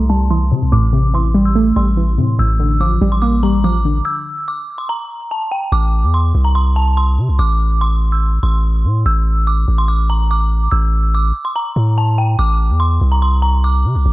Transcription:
Already playing: C2 C3 E3 A3
0.09 G3 A5
0.30 E3 C6
0.51 C3
0.62 C2
0.72 A1 A2 D6
0.93 C3
1.14 E3 C6
1.34 G3
1.45 E6
1.55 A3
1.76 A1 G3 C6
1.97 E3
2.18 A2 C3
2.39 A1 A2 E6
2.60 D3
2.80 F3 D6
3.01 A1 G3
3.12 C6
3.22 A#3 D6
3.43 G3 A#5
3.64 F3 D6
3.85 D3
4.05 E6
4.48 D6
4.78 C6
4.89 A#5
5.31 A5
5.51 G5
5.72 A1 D6
6.03 E2
6.14 C6
6.35 C2
6.45 A#5
6.55 C6
6.76 A5
6.97 C6
7.18 C3
7.28 C2
7.39 A1 D6
7.81 C6
8.12 E6
8.43 A1 C6
8.85 A2
9.06 A1 E6
9.47 D6
9.68 A1
9.78 C6
9.88 D6
10.10 A#5
10.31 D6
10.71 A1 E6
11.15 D6
11.45 C6
11.56 A#5
11.76 A2
11.98 A5
12.18 G5
12.39 A1 D6
12.70 E2
12.80 C6
13.01 C2
13.12 A#5
13.22 C6
13.42 A#5
13.64 D6
13.85 C3
13.95 C2
14.06 A1

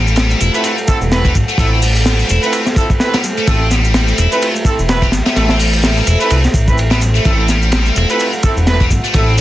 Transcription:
Already playing: A1 G3 A3 A4 C5 F#5
0.07 shaker
0.16 snare, ride, shaker
0.30 shaker
0.40 E1 E4, ride, shaker
0.54 A3 C4 E4 B4, ride, shaker
0.64 A3, ride, shaker
0.78 shaker
0.88 A3 C4 E4 A4, kick, ride, shaker
1.01 E1, shaker
1.12 A3 C4 E4 B4, snare, ride, shaker
1.25 G3, kick, shaker
1.35 A1, kick, ride, shaker
1.48 A3, shaker
1.58 A1 A3 C4 E4 A4, kick, ride, shaker
1.72 C4
1.82 G3, open hi-hat, shaker
1.95 ride, shaker
2.06 snare, ride, shaker
2.19 shaker
2.29 E1 E4, ride, shaker
2.43 A3 C4 E4 B4, shaker
2.53 A3, ride, shaker
2.66 snare, shaker
2.76 A3 C4 E4 A4, kick, ride, shaker
2.90 kick, shaker
3.00 A3 C4 E4 B4, snare, ride, shaker
3.14 G3, snare, ride, shaker
3.23 snare, ride, shaker
3.37 A3, shaker
3.47 A1 A3 C4 E4 A4 E5, kick, ride, shaker
3.61 C4
3.71 G3, snare, ride, shaker
3.84 shaker
3.94 snare, ride, shaker
4.08 shaker
4.18 E1 E4, ride, shaker
4.32 A3 C4 E4 B4, ride, shaker
4.42 A3, ride, shaker
4.55 shaker
4.65 A3 C4 E4 A4, kick, ride, shaker
4.79 E1, shaker
4.89 A3 C4 E4 B4, snare, ride, shaker
5.02 G3, kick, shaker
5.12 A1, snare, ride, shaker
5.26 A3, snare, ride, shaker
5.36 A1 A3 C4 E4 A4, snare, ride, shaker
5.49 C4, snare, ride
5.59 G3, open hi-hat, shaker
5.73 ride, shaker
5.84 snare, ride, shaker
5.97 shaker
6.07 E1 E4, ride, shaker
6.20 A3 C4 E4 B4, shaker
6.30 C2 A3, ride, shaker
6.44 snare, shaker
6.54 A1, kick, ride, shaker
6.68 A3 C4 E4 B4, kick, shaker
6.78 ride, shaker
6.91 G3 A3 C4 E4 B4, snare, shaker
7.01 snare, ride, shaker
7.15 A3, shaker
7.25 A1 A3 C4 E4 A4 F#5, kick, ride, shaker
7.39 C4
7.49 G3, snare, ride, shaker
7.62 shaker
7.72 snare, ride, shaker
7.86 shaker
7.96 E1 E4, ride, shaker
8.09 A3 C4 E4 B4, ride, shaker
8.20 A3, ride, shaker
8.33 shaker
8.43 A3 C4 E4 A4, kick, ride, shaker
8.57 E1, shaker
8.67 A3 C4 E4 B4, snare, ride, shaker
8.81 G3, kick, shaker
8.90 A1, kick, ride, shaker
9.04 A3, shaker
9.14 A1 A3 C4 E4 A4, kick, ride, shaker
9.28 C4
9.38 shaker

